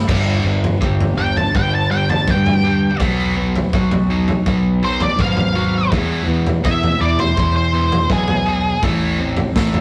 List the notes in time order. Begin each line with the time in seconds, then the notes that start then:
0.07 G1 G2 D3 G3, kick, floor tom, crash
0.44 G1 G2 D3 B3
0.64 floor tom
0.81 G1 G2 D3 G4, kick
1.01 floor tom
1.16 G1 G2 D3 D4 G5
1.37 A5, floor tom
1.54 G1 G2 D3 B3 G5, kick
1.75 A5
1.90 G2 D3 G3 G5
2.10 A5, floor tom
2.28 G2 D3 B3 G5, kick
2.46 floor tom
2.64 G2 D3 G4
3.00 B1 B2 F#3 B3, kick, floor tom
3.37 B2 F#3 B3
3.56 floor tom
3.73 B1 B2 F#3 F#4, kick
3.91 floor tom
4.10 B2 F#3 D#4
4.28 floor tom
4.46 B1 B2 F#3 B3, kick
4.83 B2 F#3 C5
5.00 D5, floor tom
5.18 G#1 B2 F#3 B3 F5, kick
5.37 floor tom
5.55 B2 F#3 F#4
5.91 E2 B2 E3, kick, floor tom
6.27 E2 B2 B3
6.47 floor tom
6.64 E2 B2 G#4 E5, kick
6.83 floor tom
6.99 E2 B2 E4 D5
7.19 C5, floor tom
7.37 E2 B2, kick
7.56 C5
7.73 E2 B2 E3
7.92 floor tom
8.09 B1 E2 B2 B3 G#4, kick
8.28 floor tom
8.46 E2 B2 G#4
8.82 A1 A2 E3 A3, kick, floor tom
9.19 A2 E3 C4
9.37 floor tom
9.56 A1 A2 E3 A4, kick, snare
9.74 floor tom